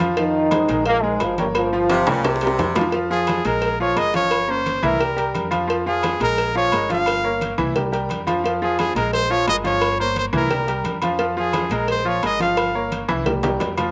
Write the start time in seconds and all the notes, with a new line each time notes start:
Already playing: F2
0.00 F3 F4 F5, cowbell, high conga
0.17 D#3 F3 D#4 F4 F5, cowbell, high conga
0.35 high conga
0.51 G#3 G#4 C5, cowbell, high conga, low agogo
0.68 A#1 G#3 G#4 A#4, cowbell, high conga, low agogo
0.86 A#2 A#3, cowbell, high conga
1.02 G#2 G#3 G#4 A#4, high conga
1.20 G1 F3 F4, cowbell, high conga, low timbale, low agogo
1.38 G2 G3 A#3 A#4 C#5, cowbell, high conga
1.55 F3 F4, cowbell, high conga, low agogo
1.73 F3 F4 F5, high conga
1.89 C3 F3 F4 F5, cowbell, high conga, high timbale, low agogo
2.07 C2 C#3 G3 G4 A#4, high conga, low conga, high timbale, low agogo
2.24 C3, cowbell, high bongo, high conga, high timbale
2.36 high bongo
2.41 G3 G4 A#4, cowbell, high conga
2.47 high bongo
2.58 F2, cowbell, low bongo, high conga, low timbale, low agogo
2.75 F3 F4 F5, cowbell, high conga, low timbale, low agogo
2.81 low bongo
2.92 F3 F4 F5, cowbell
3.10 F3 F4 G#4 F5, high conga
3.27 cowbell, high conga, low agogo
3.45 A#1 G#3 G#4 A#4, cowbell, high conga, low agogo
3.62 cowbell, high conga
3.80 F3 F4 C#5 F5, high conga
3.96 G1 G#3 G#4 A#4 D#5, cowbell, high conga, low agogo
4.14 F3 F4 C#5 F5, cowbell, high conga
4.31 cowbell, low agogo
4.48 A#3 C#4 A#4 C5
4.66 cowbell, high conga, low agogo
4.82 C2 E3 E4 A#4 E5, high conga, low conga, low agogo
5.00 G3 G4 A#4, cowbell, high conga
5.16 G3 G4 A#4, cowbell, high conga
5.35 F2, cowbell, high conga, low agogo
5.51 F3 F4 F5, cowbell, high conga, low agogo
5.67 F3 F4 F5, cowbell, high conga
5.86 F3 F4 G#4 F5, high conga
6.03 cowbell, high conga, low agogo
6.20 A#1 G#3 G#4 A#4, cowbell, high conga, low agogo
6.38 cowbell, high conga
6.55 F3 F4 C#5 F5
6.72 G1 G#3 G#4 A#4, cowbell, high conga, low agogo
6.89 F3 F4 F5, cowbell, high conga
7.06 cowbell, high conga, low agogo
7.24 A#3 A#4 C#5, high conga
7.41 cowbell, high conga, low agogo
7.58 C2 E3 E4 E5, high conga, low conga, low agogo
7.76 G3 G4 A#4, cowbell, high conga, low conga
7.92 G3 G4 A#4, cowbell, high conga
8.09 F2, cowbell, high conga, low agogo
8.27 F3 F4 F5, cowbell, high conga, low agogo
8.44 F3 F4 F5, cowbell, high conga
8.62 F3 F4 G#4 F5, high conga
8.79 G#4, cowbell, high conga, low agogo
8.95 A#1 G#3 G#4 A#4, cowbell, high conga, low agogo
9.13 C5, cowbell, high conga
9.30 F3 F4 C#5 F5, high conga
9.47 G1 G#3 G#4 A#4 D#5, cowbell, high conga, low timbale, low agogo
9.64 F3 F4 C#5 F5, cowbell, high conga
9.81 cowbell, high conga, low agogo
9.99 A#3 A#4 C5 C#5, high conga
10.16 C5, cowbell, high conga, low agogo
10.33 C2 E3 E4 A#4 E5, high conga, low conga, low agogo
10.50 G3 G4 A#4, cowbell, high conga, low conga
10.67 G3 G4 A#4, cowbell, high conga
10.84 F2, cowbell, high conga, low agogo
11.02 F3 F4 F5, cowbell, high conga, low agogo
11.19 F3 F4 F5, cowbell, high conga
11.37 F3 F4 G#4 F5, high conga
11.53 cowbell, high conga, low agogo
11.70 A#1 G#3 G#4 A#4, cowbell, high conga, low agogo
11.88 C5, cowbell, high conga
12.05 F3 F4 C#5 F5, high conga
12.22 G1 G#3 G#4 A#4 D#5, cowbell, high conga, low agogo
12.40 F3 F4 F5, cowbell, high conga
12.57 cowbell, high conga, low agogo
12.74 A#3 A#4 C#5, high conga
12.92 cowbell, high conga, low agogo
13.08 C2 E3 E4 E5, high conga, high timbale, low agogo
13.26 G3 G4 A#4, cowbell, low conga
13.43 G3 G4 A#4, cowbell, low conga, high timbale
13.60 F2, cowbell, low conga, low timbale, low agogo
13.77 F3 F4 F5, cowbell, low conga, low timbale, low agogo